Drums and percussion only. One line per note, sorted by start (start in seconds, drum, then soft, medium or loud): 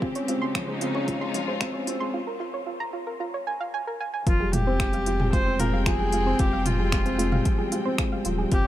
0.02 kick loud
0.15 closed hi-hat soft
0.28 closed hi-hat medium
0.28 mid tom medium
0.55 finger snap medium
0.55 kick loud
0.55 closed hi-hat soft
0.81 closed hi-hat medium
0.95 mid tom medium
1.08 kick loud
1.08 closed hi-hat soft
1.34 closed hi-hat medium
1.34 mid tom medium
1.61 finger snap medium
1.61 kick loud
1.61 closed hi-hat soft
1.87 closed hi-hat medium
4.27 kick loud
4.27 closed hi-hat soft
4.53 closed hi-hat medium
4.53 mid tom medium
4.80 finger snap medium
4.80 kick loud
4.80 closed hi-hat soft
4.93 closed hi-hat soft
5.06 closed hi-hat medium
5.20 mid tom medium
5.33 kick loud
5.33 closed hi-hat soft
5.60 closed hi-hat medium
5.60 mid tom medium
5.86 finger snap loud
5.86 kick loud
5.86 closed hi-hat soft
6.12 closed hi-hat medium
6.39 kick loud
6.39 closed hi-hat soft
6.66 closed hi-hat medium
6.66 mid tom medium
6.92 finger snap loud
6.92 kick loud
6.92 closed hi-hat soft
7.06 closed hi-hat soft
7.19 closed hi-hat medium
7.32 mid tom medium
7.45 kick loud
7.45 closed hi-hat soft
7.72 closed hi-hat medium
7.98 finger snap medium
7.98 kick loud
7.98 closed hi-hat soft
8.25 closed hi-hat medium
8.52 kick loud
8.52 closed hi-hat soft